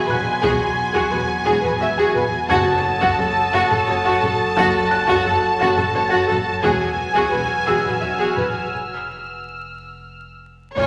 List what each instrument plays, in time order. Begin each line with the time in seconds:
Already playing: sub bass E1, french horn section F#3 G#4, glass harmonica B3 F#5 G#5, violin section G#5 B5 C6
0.07 double bass section E1, cello section E2, viola section F#4, violin section B4, felt piano F#6, taiko low-mid
0.42 double bass section E1, cello section E2, viola section F#4, violin section G#4, taiko
0.94 cello section E2, viola section F#4, violin section G#4, taiko
1.11 double bass section E1, cello section E2, viola section F#4, violin section B4
1.36 violin section C#6
1.46 double bass section E1, cello section E2, viola section F#4, violin section G#4
1.63 cello section E2, viola section F#4, violin section B4, taiko low-mid
1.80 double bass section E1, cello section E2, viola section F#4, violin section E5
1.97 cello section E2, viola section F#4, violin section G#4
2.15 double bass section E1, cello section E2, viola section F#4, violin section B4, taiko low-mid
2.49 sub bass F#1, double bass section F#1, cello section F#2, timpani F#2, french horn section F#3 A4, viola section F#4, violin section F#4 A5 C#6 D#6 E6, glass harmonica C#5 F#5 A5, felt piano A5 G#6, taiko
3.01 cello section F#2, viola section F#4, violin section F#4, taiko
3.18 double bass section F#1, cello section F#2, viola section F#4, violin section A4
3.53 double bass section F#1, cello section F#2, viola section F#4, violin section F#4
3.70 cello section F#2, viola section F#4, violin section A4, taiko low-mid
3.88 double bass section F#1, cello section F#2, viola section F#4, violin section C#5
4.05 cello section F#2, viola section F#4, violin section F#4
4.22 double bass section F#1, cello section F#2, viola section F#4, violin section A4, taiko low-mid
4.56 double bass section F#1, cello section F#2, viola section F#4, violin section F#4, taiko
4.91 felt piano F#5 F#6
5.08 cello section F#2, viola section F#4, violin section F#4, taiko
5.26 double bass section F#1, cello section F#2, viola section F#4, violin section A4
5.61 double bass section F#1, cello section F#2, viola section F#4, violin section F#4
5.77 cello section F#2, viola section F#4, violin section A4, taiko low-mid
5.94 double bass section F#1, cello section F#2, viola section F#4, violin section C#5
6.11 cello section F#2, violin section F#4, viola section F#4
6.28 double bass section F#1, cello section F#2, viola section F#4, violin section A4, taiko low-mid
6.62 sub bass E1, double bass section E1, cello section E2, french horn section F#3 G#4, viola section F#4, violin section G#4 G#5 E6, glass harmonica B4 G#5, taiko
7.14 cello section E2, viola section F#4, violin section G#4, taiko
7.32 double bass section E1, cello section E2, viola section F#4, violin section B4 F6
7.66 double bass section E1, cello section E2, viola section F#4, violin section G#4, felt piano E6
7.84 cello section E2, viola section F#4, violin section B4, taiko low-mid
8.01 double bass section E1, cello section E2, viola section F#4, violin section E5
8.18 cello section E2, viola section F#4, violin section G#4
8.36 double bass section E1, cello section E2, viola section F#4, violin section B4, taiko low-mid
8.71 sub bass F1
10.76 sub bass A#1, double bass section A#1, cello section A#2, viola section F4, violin section C#5 G#5 A#5 E6, felt piano C#5 C#6, taiko